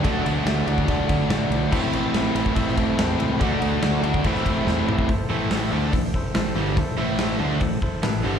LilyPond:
<<
  \new Staff \with { instrumentName = "Upright piano" } { \time 4/4 \key a \dorian \tempo 4 = 143 <fis' a' d''>8 <fis' a' d''>8 <fis' a' e''>8 <fis' a' d''>8 <fis' a' d''>8 <fis' a' d''>8 <fis' a' d''>8 <fis' a' d''>8 | <e' a' c''>8 <e' a' c''>8 <e' a' c''>8 <e' a' c''>8 <e' a' c''>8 <e' a' c''>8 <e' a' c''>8 <e' a' c''>8 | <fis' a' d''>8 <fis' a' d''>8 <fis' a' d''>8 <fis' a' d''>8 <e' a' c''>8 <e' a' c''>8 <e' a' c''>8 <e' a' c''>8 | <e' a' c''>8 <e' a' c''>8 <e' a' c''>8 <e' a' c''>8 <e' a' c''>8 <e' a' c''>8 <e' a' c''>8 <e' a' c''>8 |
<e' a' c''>8 <e' a' c''>8 <e' a' c''>8 <e' a' c''>8 <e' a' c''>8 <e' a' c''>8 <e' a' b'>8 <e' a' c''>8 | }
  \new Staff \with { instrumentName = "Overdriven electric guitar" } { \time 4/4 \key a \dorian <d a d' fis'>8 <a d' fis'>8 <d a d' fis'>8 <a d' fis'>8 <d a d' fis'>8 <a d' fis'>8 <d a d' fis'>4 | <a, e a c' e'>8 <a c' e'>8 <e a c' e'>8 <a c' e'>8 <a, e a c' e'>8 <a c' e'>8 <e a c' e'>4 | <d a d' fis'>8 <a d' fis'>8 <d a d' fis'>8 <a d' fis'>8 <a, e a c' e'>8 <a c' e'>8 <e a c' e'>4 | r8 <a, e a>4 <d a d'>8 <a, e>8 r8 <a, e>8 <g, d g>8 |
r8 <a, e a>4 <d a d'>8 <a, e>8 r8 <a, e>8 <g, d g>8 | }
  \new Staff \with { instrumentName = "Overdriven electric guitar" } { \time 4/4 \key a \dorian <d fis a d'>4. <d fis a d'>2~ <d fis a d'>8 | <a, e a c' e'>4. <a, e a c' e'>2~ <a, e a c' e'>8 | <d a d' fis'>4. <d a d' fis'>8 <a, e a c' e'>4. <a, e a c' e'>8 | r1 |
r1 | }
  \new Staff \with { instrumentName = "Overdriven electric guitar" } { \clef bass \time 4/4 \key a \dorian <d a d'>1 | <a, e a>1 | <d a d'>2 <a, e a>2 | r8 <a, e a>4 <d a d'>8 <a, e>8 r8 <a, e>8 <g, d g>8 |
r8 <a, e a>4 <d a d'>8 <a, e>8 r8 <a, e>8 <g, d g>8 | }
  \new Staff \with { instrumentName = "Fingered electric bass" } { \clef bass \time 4/4 \key a \dorian d,8 d,8 d,8 d,8 d,8 d8 a,8 b,,8 | a,,8 a,,8 a,,8 a,,8 a,,8 a,8 e,8 cis,8 | d,8 d,8 d,8 d,8 a,,8 a,8 e,8 a,,8 | r8 a,,4 d,8 a,,8 r8 a,,8 g,,8 |
r8 a,,4 d,8 a,,8 r8 a,,8 g,,8 | }
  \new DrumStaff \with { instrumentName = "Drums" } \drummode { \time 4/4 <bd cymr>8 cymr8 <cymr sn>8 cymr16 bd16 <bd cymr>8 <bd cymr>8 <cymr sn>8 cymr8 | <cymc bd>8 cymr8 <cymr sn>8 cymr16 bd16 <bd cymr>16 sn16 <bd cymr>8 <cymr sn>8 cymr8 | <bd cymr>8 cymr8 <cymr sn>8 cymr16 bd16 <bd cymr>16 sn16 <bd cymr>8 sn8 toml16 bd16 | <hho bd>4 <hho sn>4 <hho bd>8 bd8 <hho sn>4 |
<hho bd>4 <hho sn>4 <hho bd>8 bd8 <hho sn>4 | }
>>